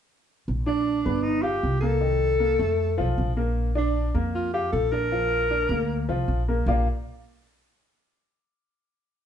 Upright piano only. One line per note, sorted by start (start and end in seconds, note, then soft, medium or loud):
0.66 0.98 D4 medium
0.66 0.99 D5 medium
1.05 1.37 B3 medium
1.05 1.37 B4 medium
1.43 1.75 F4 medium
1.43 1.75 F5 medium
1.82 1.98 A#3 medium
1.82 1.98 A#4 medium
2.01 2.33 D#3 medium
2.01 2.33 D#4 medium
2.39 2.56 A#3 medium
2.39 2.56 A#4 medium
2.59 2.91 A3 medium
2.59 2.91 A4 medium
2.98 3.30 F3 medium
2.98 3.30 F4 medium
3.37 3.69 A#3 medium
3.37 3.69 A#4 medium
3.75 4.07 D4 medium
3.75 4.07 D5 medium
4.14 4.46 A#3 medium
4.14 4.47 A#4 medium
4.54 4.86 F4 medium
4.54 4.85 F5 medium
4.92 5.08 D4 medium
4.92 5.08 D5 medium
5.12 5.44 F3 medium
5.12 5.44 F4 medium
5.51 5.66 D4 medium
5.51 5.67 D5 medium
5.71 6.02 A#3 medium
5.71 6.02 A#4 medium
6.09 6.40 F3 medium
6.09 6.41 F4 medium
6.48 6.64 A#3 medium
6.48 6.64 A#4 medium
6.68 6.85 A#3 medium
6.68 6.85 F4 medium
6.68 6.85 G4 medium
6.68 6.85 A#4 medium
6.68 6.86 D5 medium
6.68 6.86 F5 medium